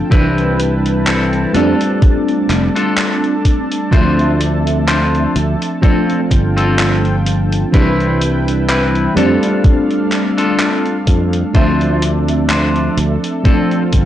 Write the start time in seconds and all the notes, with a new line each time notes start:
Already playing: F3 A3 C4 D4 G5 A5
0.10 C2 E3 G3 C4 D4 E4 B4, kick, closed hi-hat
0.38 closed hi-hat
0.60 closed hi-hat
0.86 closed hi-hat
1.07 C4 E4 A4, clap, closed hi-hat
1.33 closed hi-hat
1.53 F2 G3 A3 C4 D4 F4 A4, closed hi-hat
1.81 closed hi-hat
2.02 kick, closed hi-hat
2.28 closed hi-hat
2.49 F1, clap, closed hi-hat
2.75 D4 F4 A4, closed hi-hat
2.98 clap, closed hi-hat
3.24 closed hi-hat
3.45 kick, closed hi-hat
3.72 closed hi-hat
3.91 D2 F3 A3 C4 D4 F4 C5 E5, kick, closed hi-hat
4.19 closed hi-hat
4.41 closed hi-hat
4.67 closed hi-hat
4.87 D4 F4 C5, clap, closed hi-hat
5.15 closed hi-hat
5.36 D2, closed hi-hat
5.62 closed hi-hat
5.81 F3 A3 C4 D4 F4 A4 G5, kick, closed hi-hat
6.10 closed hi-hat
6.31 G1, kick, closed hi-hat
6.57 C4 F4 A4, closed hi-hat
6.79 clap, closed hi-hat
7.05 closed hi-hat
7.26 closed hi-hat
7.52 closed hi-hat
7.72 C2 E3 G3 C4 D4 E4 B4 G5, kick, closed hi-hat
8.00 closed hi-hat
8.21 closed hi-hat
8.48 closed hi-hat
8.69 C4 E4 B4, clap, closed hi-hat
8.95 closed hi-hat
9.15 F2 G3 A3 C4 D4 F4 A4 F5, closed hi-hat
9.43 closed hi-hat
9.64 kick, closed hi-hat
9.91 closed hi-hat
10.12 clap, closed hi-hat
10.38 D4 F4 A4, closed hi-hat
10.59 clap, closed hi-hat
10.86 closed hi-hat
11.07 F2, kick, closed hi-hat
11.33 closed hi-hat
11.53 D2 F3 A3 C4 D4 F4 A4 C5 E5, kick, closed hi-hat
11.81 closed hi-hat
12.02 closed hi-hat
12.28 closed hi-hat
12.49 D4 F4 C5, clap, closed hi-hat
12.76 closed hi-hat
12.97 D2, closed hi-hat
13.24 closed hi-hat
13.43 F3 A3 C4 D4 F4 A4 G5, kick, closed hi-hat
13.71 closed hi-hat
13.93 G1, kick, closed hi-hat